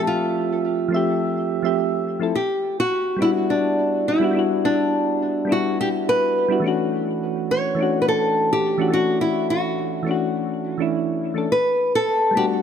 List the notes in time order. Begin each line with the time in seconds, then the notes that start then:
Already playing: F3 A3 C4 G4 E5
0.07 F4
0.88 F3 A3 C4
0.94 G4 E5
1.62 F3 A3 C4 G4 E5
2.19 F3 A3 C4 E4 A4
2.35 G4
2.80 F#4
3.17 G3 B3
3.21 D4 E4 F#4
3.50 D4
4.08 E4
4.20 G3 B3 D4 E4
4.24 F#4
4.31 G3 B3 D4
4.37 E4 F#4
4.65 D4
5.45 G3 B3
5.49 D4 E4 F#4
5.81 G4
6.09 B4
6.48 G3 B3 D4 E4 F#4
6.60 E3 A3
6.64 C#4 D4 F#4
7.51 C#5
7.75 E3 A3 C#4
7.81 D4 F#4
8.02 B4
8.08 A4
8.53 G4
8.78 E3 A3 C#4 D4 F#4
8.88 E3 A3
8.92 C#4 D4 F#4
9.21 E4
9.50 F#4
10.03 E3 A3 C#4
10.09 D4 F#4
10.78 E3 A3 C#4 D4
10.82 E4
11.34 E3 A3 C#4 D4 A4
11.52 B4
11.95 A4
12.31 G3 A3
12.35 B3 D4 F#4 G4